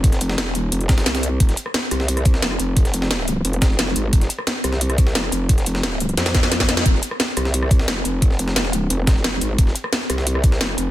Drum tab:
HH |xxx-x-x-xxxxxxx-|xxx-x-x-xxx-x-x-|xxx-x-x-xxx-x-x-|xxx-x-x-xxx-x-x-|
SH |-xx---x---x--xx-|--x---x---x---x-|--x---x---x---x-|--x---x---x---x-|
SD |-o-ooo----oooo--|-o-rooro-r-oor--|-o-ooo----oooo--|-o-rooro-r-oor--|
BD |o---------o-----|o---------o-----|o---------o-----|o---------o-----|

HH |xxx-x-xxxxx-xxx-|x-x-x-x-x-x-x-x-|x-x-x-x-x-x-x-x-|x-x-x-x-x-x-x-x-|
SH |-xx---x---xx-xx-|--x---x---x---x-|--x---x---x---x-|--x---x---x---x-|
SD |-o-ooo--oooooooo|-o-rooro-r-oor--|-o-ooo----oooo--|-o-rooro-r-oor--|
BD |o---------o--o--|o---------o-----|o---------o-----|o---------o-----|